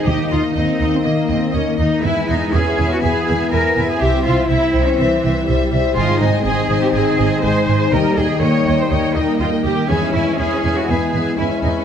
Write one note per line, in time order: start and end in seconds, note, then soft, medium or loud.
0.00 0.38 D#4 soft
0.00 0.57 D#4 soft
0.00 2.01 D#4 soft
0.04 0.14 D#2 soft
0.04 1.04 D#3 soft
0.04 0.77 D#3 soft
0.04 2.00 A#3 soft
0.04 0.32 G4 medium
0.04 0.28 D#5 soft
0.04 0.29 D#5 soft
0.23 1.21 A#3 soft
0.29 0.40 D#2 soft
0.29 0.40 F4 medium
0.29 0.52 D#5 soft
0.29 0.54 D#5 soft
0.39 1.38 D#4 soft
0.54 0.64 D#2 soft
0.54 1.05 C4 soft
0.54 0.93 D#4 soft
0.54 0.77 D#5 soft
0.54 0.79 D#5 soft
0.54 0.88 D#5 soft
0.73 1.70 A#4 soft
0.78 0.89 D#2 soft
0.78 1.01 D#5 soft
0.78 1.03 D#5 soft
0.89 1.54 D#5 soft
0.94 1.06 C4 soft
1.02 1.13 D#2 soft
1.02 2.06 D#3 soft
1.02 1.52 A#3 soft
1.02 1.30 A#3 soft
1.02 1.26 D#5 soft
1.02 1.28 D#5 soft
1.22 2.06 A#3 soft
1.27 1.38 D#2 soft
1.27 1.55 C4 soft
1.27 1.50 D#5 soft
1.27 1.53 D#5 soft
1.39 2.06 D#4 soft
1.51 1.62 D#2 soft
1.51 2.02 A#3 soft
1.51 1.80 C#4 soft
1.51 1.75 D#5 soft
1.51 1.78 D#5 soft
1.71 2.06 A#4 soft
1.76 1.87 D#2 soft
1.76 2.04 D#4 medium
1.76 2.02 D#5 soft
1.76 2.03 D#5 soft
1.88 2.06 D#5 soft
2.01 2.11 E2 soft
2.01 3.02 E3 soft
2.01 2.53 G#3 soft
2.01 3.96 B3 soft
2.01 5.91 E4 soft
2.01 2.29 E4 medium
2.01 2.26 B4 soft
2.01 2.27 E5 soft
2.01 2.27 G#5 soft
2.21 3.18 E4 soft
2.28 2.37 E2 soft
2.28 2.54 D#4 medium
2.28 2.52 B4 soft
2.28 2.51 E5 soft
2.28 2.51 G#5 soft
2.37 3.35 G#3 soft
2.52 2.62 E2 soft
2.52 3.02 C#4 soft
2.52 2.85 G#4 soft
2.52 2.91 G#4 medium
2.52 2.78 B4 soft
2.52 2.77 E5 soft
2.52 2.76 G#5 soft
2.70 4.03 B3 soft
2.77 2.87 E2 soft
2.77 3.01 B4 soft
2.77 3.01 E5 soft
2.77 2.99 G#5 soft
2.87 3.51 G#4 soft
2.92 2.97 F#4 medium
3.00 3.11 E2 soft
3.00 4.03 E3 soft
3.00 4.01 B3 soft
3.00 3.51 G#4 medium
3.00 3.25 B4 soft
3.00 3.25 E5 soft
3.00 3.25 G#5 soft
3.20 4.48 E4 soft
3.26 3.36 E2 soft
3.26 3.50 B4 soft
3.26 3.50 E5 soft
3.26 3.51 G#5 soft
3.36 4.03 G#3 soft
3.51 3.61 E2 soft
3.51 3.84 G#4 soft
3.51 3.88 A#4 medium
3.51 3.75 B4 soft
3.51 3.75 E5 soft
3.51 3.75 G#5 soft
3.69 4.03 B4 soft
3.76 3.85 E2 soft
3.76 4.00 B4 soft
3.76 3.98 E5 soft
3.76 4.00 G#5 soft
3.85 4.03 G#4 soft
3.89 4.01 G#4 medium
4.00 4.10 C2 soft
4.00 4.98 C3 soft
4.00 4.97 C4 soft
4.00 7.93 C4 soft
4.00 4.25 G4 medium
4.00 4.23 C5 medium
4.00 4.23 E5 medium
4.00 4.24 E5 soft
4.17 5.15 G3 soft
4.24 4.34 C2 soft
4.24 4.49 F4 medium
4.24 4.47 C5 soft
4.24 4.47 E5 soft
4.24 4.48 E5 soft
4.33 5.31 C4 soft
4.48 4.58 C2 soft
4.48 4.81 E4 soft
4.48 4.86 E4 medium
4.48 4.72 C5 soft
4.48 4.72 E5 soft
4.48 4.73 E5 soft
4.66 5.63 C5 soft
4.73 4.82 C2 soft
4.73 4.97 C5 soft
4.73 4.97 E5 soft
4.73 4.98 E5 soft
4.82 5.47 E4 soft
4.87 4.99 C#4 medium
4.98 5.08 C2 soft
4.98 5.99 C3 soft
4.98 5.46 E3 medium
4.98 5.23 C4 medium
4.98 5.22 C5 medium
4.98 5.22 E5 soft
5.16 5.99 G3 soft
5.23 5.32 C2 soft
5.23 5.46 C5 soft
5.23 5.47 E5 soft
5.32 6.28 C4 soft
5.47 5.57 C2 soft
5.47 5.96 G3 soft
5.47 5.79 E4 soft
5.47 5.71 C5 soft
5.47 5.71 E5 soft
5.64 6.60 C5 soft
5.72 5.80 C2 soft
5.72 5.96 C5 soft
5.72 5.96 E5 soft
5.80 5.98 E4 soft
5.96 6.05 G#1 medium
5.96 6.93 G#2 medium
5.96 6.44 G#3 soft
5.96 9.72 D#4 medium
5.96 6.19 F4 medium
5.96 6.19 C5 medium
5.96 6.19 D#5 medium
5.96 6.20 G#5 soft
6.13 7.10 D#3 soft
6.20 6.29 G#1 soft
6.20 6.45 D#4 medium
6.20 6.44 C5 soft
6.20 6.43 D#5 soft
6.20 6.44 G#5 soft
6.44 6.53 G#1 medium
6.44 7.44 C4 medium
6.44 6.77 D#4 soft
6.44 6.81 G#4 medium
6.44 6.68 C5 soft
6.44 6.68 D#5 soft
6.44 6.68 G#5 soft
6.62 7.59 C5 soft
6.69 6.78 G#1 soft
6.69 6.92 C5 soft
6.69 6.92 D#5 soft
6.69 6.93 G#5 soft
6.78 7.42 D#4 soft
6.82 6.87 G4 medium
6.93 7.02 G#1 soft
6.93 7.95 G#2 soft
6.93 7.42 G#4 medium
6.93 7.16 C5 soft
6.93 7.16 D#5 soft
6.93 7.17 G#5 soft
7.11 7.91 D#3 soft
7.17 7.27 G#1 soft
7.17 7.41 C5 soft
7.17 7.41 D#5 soft
7.17 7.41 G#5 soft
7.28 7.95 C4 soft
7.42 7.52 G#1 soft
7.42 7.92 G#3 soft
7.42 7.75 D#4 soft
7.42 7.67 C5 soft
7.42 7.91 C5 medium
7.42 7.67 D#5 soft
7.42 7.65 G#5 soft
7.60 7.94 C5 soft
7.66 7.76 G#1 soft
7.66 7.92 C5 soft
7.66 7.92 D#5 soft
7.66 7.91 G#5 soft
7.76 8.24 D#4 soft
7.92 8.00 D#2 medium
7.92 8.62 D#3 soft
7.92 8.90 D#3 medium
7.92 8.41 G3 soft
7.92 9.72 G3 soft
7.92 8.17 A#4 medium
7.92 8.15 D#5 medium
7.92 8.16 G5 soft
8.09 9.07 G3 soft
8.17 8.25 D#2 soft
8.17 8.42 G#4 medium
8.17 8.39 D#5 soft
8.17 8.40 G5 soft
8.40 8.49 D#2 soft
8.40 8.90 A#3 soft
8.40 8.79 C#5 medium
8.40 8.64 D#5 soft
8.40 8.73 D#5 soft
8.40 8.66 G5 soft
8.58 9.57 G4 soft
8.66 8.74 D#2 soft
8.66 8.88 D#5 soft
8.66 8.90 G5 soft
8.75 9.40 D#5 soft
8.80 8.92 C5 soft
8.90 8.99 D#2 soft
8.90 9.92 D#3 soft
8.90 9.87 A#3 soft
8.90 9.16 C#5 medium
8.90 9.13 D#5 soft
8.90 9.15 G5 soft
9.08 9.92 G3 soft
9.15 9.24 D#2 soft
9.15 9.40 D#4 medium
9.15 9.37 D#5 soft
9.15 9.39 G5 soft
9.25 9.92 D#4 soft
9.38 9.49 D#2 soft
9.38 9.48 F4 medium
9.38 9.63 D#5 soft
9.38 9.73 D#5 soft
9.38 9.63 G5 soft
9.58 9.92 G4 soft
9.64 9.73 D#2 soft
9.64 9.89 G4 medium
9.64 9.89 D#5 soft
9.64 9.89 G5 soft
9.74 9.92 D#5 soft
9.88 9.97 E2 soft
9.88 10.87 E3 soft
9.88 11.85 G#3 soft
9.88 10.88 C#4 medium
9.88 11.84 E4 soft
9.88 10.14 G#4 medium
9.88 10.12 B4 soft
9.88 10.12 E5 soft
9.88 10.12 G#5 soft
10.07 11.04 E4 soft
10.13 10.22 E2 soft
10.13 10.38 E4 medium
10.13 10.37 B4 soft
10.13 10.37 E5 soft
10.13 10.38 G#5 soft
10.24 11.21 G#3 soft
10.38 10.47 E2 soft
10.38 10.75 G#4 medium
10.38 10.71 G#4 soft
10.38 10.61 B4 soft
10.38 10.61 E5 soft
10.38 10.62 G#5 soft
10.56 11.54 B4 soft
10.62 10.72 E2 soft
10.62 10.86 B4 soft
10.62 10.86 E5 soft
10.62 10.86 G#5 soft
10.72 10.88 F#4 soft
10.72 11.37 G#4 soft
10.87 10.97 E2 soft
10.87 11.85 E3 soft
10.87 11.38 B3 soft
10.87 11.38 G#4 soft
10.87 11.11 B4 soft
10.87 11.11 E5 soft
10.87 11.12 G#5 soft
11.05 11.85 E4 soft
11.12 11.21 E2 soft
11.12 11.36 B4 soft
11.12 11.36 E5 soft
11.12 11.36 G#5 soft
11.22 11.85 G#3 soft
11.37 11.47 E2 soft
11.37 11.85 C#4 soft
11.37 11.46 E4 soft
11.37 11.71 G#4 soft
11.37 11.61 B4 soft
11.37 11.61 E5 soft
11.37 11.61 G#5 soft
11.55 11.85 B4 soft
11.63 11.71 E2 soft
11.63 11.76 D#4 soft
11.63 11.85 B4 soft
11.63 11.85 E5 soft
11.63 11.85 G#5 soft
11.72 11.85 G#4 soft
11.76 11.85 C#4 soft